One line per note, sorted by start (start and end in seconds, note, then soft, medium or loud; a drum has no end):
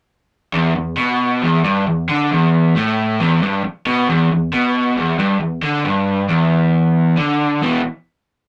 0.55 0.75 E2 loud
0.76 0.94 E2 medium
0.98 1.42 B2 loud
1.43 1.64 E2 loud
1.64 1.86 G2 loud
1.87 2.05 E2 medium
2.09 2.31 D3 loud
2.31 2.75 E2 medium
2.76 3.19 A2 loud
3.20 3.42 E2 loud
3.42 3.64 G2 loud
3.65 muted overdriven electric guitar stroke medium
3.86 4.08 B2 loud
4.08 4.30 E2 medium
4.31 4.49 E2 medium
4.53 4.97 B2 loud
4.97 5.19 E2 loud
5.19 5.40 G2 loud
5.41 5.59 E2 medium
5.63 5.85 D3 loud
5.85 6.28 G2 medium
6.29 7.17 E2 loud
7.18 7.62 D3 loud
7.62 7.80 E2 medium
7.62 7.81 B2 loud
7.62 7.81 E3 loud